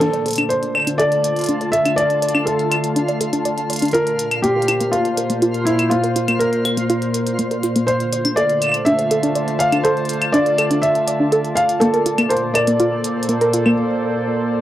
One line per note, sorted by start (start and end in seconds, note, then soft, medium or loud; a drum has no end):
0.00 3.95 D3 medium
0.00 0.05 D4 medium
0.00 13.78 F4 medium
0.00 0.51 A4 medium
0.00 1.31 A4 medium
0.00 1.14 C5 medium
0.00 7.88 D5 medium
0.00 closed hi-hat soft
0.13 3.95 A3 medium
0.13 0.24 D5 medium
0.13 closed hi-hat soft
0.18 5.03 A5 medium
0.26 0.33 A4 medium
0.26 closed hi-hat soft
0.28 closed hi-hat soft
0.31 4.63 F4 medium
0.31 closed hi-hat medium
0.33 closed hi-hat medium
0.36 0.42 D4 medium
0.36 closed hi-hat medium
0.38 closed hi-hat soft
0.38 claves medium
0.49 0.95 C5 medium
0.49 0.55 D5 medium
0.49 closed hi-hat soft
0.63 closed hi-hat soft
0.75 0.79 D5 medium
0.75 claves medium
0.77 claves medium
0.80 claves soft
0.82 claves soft
0.85 0.94 D4 medium
0.85 closed hi-hat medium
0.85 claves soft
0.98 1.07 A4 loud
0.98 1.75 D5 medium
0.98 closed hi-hat soft
1.12 closed hi-hat soft
1.24 closed hi-hat medium
1.36 closed hi-hat soft
1.39 closed hi-hat soft
1.41 closed hi-hat soft
1.44 closed hi-hat soft
1.46 closed hi-hat soft
1.49 1.53 D4 medium
1.49 closed hi-hat soft
1.61 1.72 D5 medium
1.61 closed hi-hat soft
1.72 1.80 A4 medium
1.72 1.98 E5 loud
1.72 closed hi-hat medium
1.86 1.90 D4 medium
1.86 closed hi-hat soft
1.86 claves soft
1.96 2.43 D5 medium
1.96 2.02 D5 medium
1.96 closed hi-hat soft
2.10 closed hi-hat soft
2.22 2.27 D5 medium
2.22 closed hi-hat medium
2.29 closed hi-hat soft
2.35 2.42 D4 medium
2.35 claves medium
2.46 3.41 A4 medium
2.46 2.54 A4 medium
2.46 closed hi-hat soft
2.59 closed hi-hat soft
2.72 closed hi-hat medium
2.72 claves medium
2.84 closed hi-hat soft
2.96 3.00 D4 medium
2.96 closed hi-hat soft
3.08 3.19 D5 medium
3.08 closed hi-hat soft
3.21 3.28 A4 medium
3.21 closed hi-hat medium
3.33 3.37 D4 medium
3.33 closed hi-hat soft
3.45 3.50 D5 medium
3.45 closed hi-hat soft
3.58 closed hi-hat soft
3.70 3.74 D5 medium
3.70 closed hi-hat medium
3.73 closed hi-hat medium
3.76 closed hi-hat medium
3.79 3.89 D4 medium
3.79 closed hi-hat soft
3.82 closed hi-hat soft
3.85 closed hi-hat soft
3.88 closed hi-hat soft
3.91 4.39 A#4 loud
3.91 closed hi-hat soft
3.94 7.88 A#2 medium
3.94 4.02 F4 loud
3.94 closed hi-hat soft
4.04 7.88 A#3 medium
4.04 closed hi-hat soft
4.16 9.45 C5 medium
4.16 closed hi-hat medium
4.31 closed hi-hat soft
4.31 claves medium
4.42 4.48 A#3 medium
4.42 4.94 G4 medium
4.42 closed hi-hat soft
4.56 4.67 A#4 medium
4.62 closed hi-hat soft
4.68 4.76 F4 medium
4.68 closed hi-hat medium
4.68 claves medium
4.81 4.85 A#3 medium
4.81 closed hi-hat soft
4.92 5.68 F4 medium
4.92 4.97 A#4 medium
4.92 closed hi-hat soft
5.05 closed hi-hat soft
5.17 5.22 A#4 medium
5.17 closed hi-hat medium
5.30 5.37 A#3 medium
5.30 closed hi-hat soft
5.42 5.49 F4 medium
5.42 closed hi-hat soft
5.54 closed hi-hat soft
5.65 5.91 E4 medium
5.65 closed hi-hat medium
5.79 closed hi-hat soft
5.79 claves soft
5.90 5.96 A#3 medium
5.90 6.41 F4 medium
5.90 closed hi-hat soft
6.04 6.14 A#4 medium
6.04 closed hi-hat soft
6.16 6.23 F4 medium
6.16 closed hi-hat medium
6.28 6.33 A#3 medium
6.28 closed hi-hat soft
6.28 claves medium
6.39 7.34 A#4 medium
6.39 6.45 A#4 medium
6.39 closed hi-hat soft
6.53 closed hi-hat soft
6.65 6.69 A#4 medium
6.65 closed hi-hat medium
6.65 claves medium
6.77 6.85 A#3 medium
6.77 closed hi-hat soft
6.90 6.97 F4 loud
6.90 closed hi-hat soft
7.02 closed hi-hat soft
7.14 closed hi-hat medium
7.27 closed hi-hat soft
7.39 7.43 A#3 medium
7.39 closed hi-hat soft
7.51 7.62 A#4 medium
7.51 closed hi-hat soft
7.63 7.71 F4 medium
7.63 closed hi-hat medium
7.76 7.80 A#3 medium
7.76 closed hi-hat soft
7.87 11.81 D3 medium
7.87 8.38 C5 medium
7.87 7.92 D5 medium
7.87 closed hi-hat soft
7.98 11.81 A3 medium
7.98 closed hi-hat soft
8.13 8.17 D5 medium
8.13 closed hi-hat medium
8.25 8.32 D4 medium
8.25 closed hi-hat soft
8.25 claves medium
8.32 13.39 F4 medium
8.32 8.87 D5 medium
8.37 8.44 A4 medium
8.37 closed hi-hat soft
8.50 closed hi-hat soft
8.59 14.61 D5 medium
8.59 13.39 A5 medium
8.59 closed hi-hat medium
8.59 claves soft
8.64 claves soft
8.67 claves soft
8.69 claves medium
8.72 closed hi-hat soft
8.72 claves medium
8.85 8.91 D4 medium
8.85 9.62 E5 loud
8.85 closed hi-hat soft
8.99 9.10 D5 medium
8.99 closed hi-hat soft
9.11 9.22 A4 medium
9.11 closed hi-hat medium
9.23 9.28 D4 medium
9.23 closed hi-hat soft
9.35 9.40 D5 medium
9.35 closed hi-hat soft
9.48 closed hi-hat soft
9.59 9.64 D5 medium
9.59 9.85 F5 loud
9.59 closed hi-hat medium
9.72 9.80 D4 medium
9.72 closed hi-hat soft
9.72 claves soft
9.83 9.92 A4 loud
9.83 10.35 C5 medium
9.83 closed hi-hat soft
9.97 closed hi-hat soft
10.05 closed hi-hat soft
10.09 closed hi-hat medium
10.13 closed hi-hat soft
10.22 closed hi-hat soft
10.22 claves medium
10.32 10.38 D4 medium
10.32 10.84 D5 medium
10.32 closed hi-hat soft
10.46 10.57 D5 medium
10.46 closed hi-hat soft
10.58 10.69 A4 medium
10.58 closed hi-hat medium
10.58 claves medium
10.71 10.75 D4 medium
10.71 closed hi-hat soft
10.82 10.87 D5 medium
10.82 11.58 E5 loud
10.82 closed hi-hat soft
10.95 closed hi-hat soft
11.08 11.12 D5 medium
11.08 closed hi-hat medium
11.20 11.27 D4 medium
11.32 11.39 A4 medium
11.32 closed hi-hat soft
11.45 closed hi-hat soft
11.55 11.81 F5 loud
11.55 closed hi-hat medium
11.69 closed hi-hat soft
11.80 14.61 A#2 medium
11.80 11.86 A#3 medium
11.80 12.31 A4 medium
11.80 closed hi-hat soft
11.94 14.61 A#3 medium
11.94 12.05 A#4 medium
11.94 closed hi-hat soft
12.06 12.17 F4 medium
12.06 closed hi-hat medium
12.14 14.61 A4 medium
12.18 12.23 A#3 medium
12.18 closed hi-hat soft
12.18 claves medium
12.29 12.35 A#4 medium
12.29 12.55 C5 medium
12.29 closed hi-hat soft
12.37 14.61 C5 medium
12.37 closed hi-hat soft
12.54 12.60 A#4 medium
12.54 13.73 D5 medium
12.54 closed hi-hat medium
12.54 claves medium
12.67 12.75 A#3 medium
12.67 closed hi-hat soft
12.80 12.87 F4 loud
12.80 closed hi-hat soft
13.04 closed hi-hat medium
13.23 closed hi-hat soft
13.29 13.33 A#3 medium
13.29 closed hi-hat soft
13.41 13.52 A#4 medium
13.41 closed hi-hat soft
13.53 13.64 F4 medium
13.53 closed hi-hat medium
13.66 13.70 A#3 medium
13.66 claves soft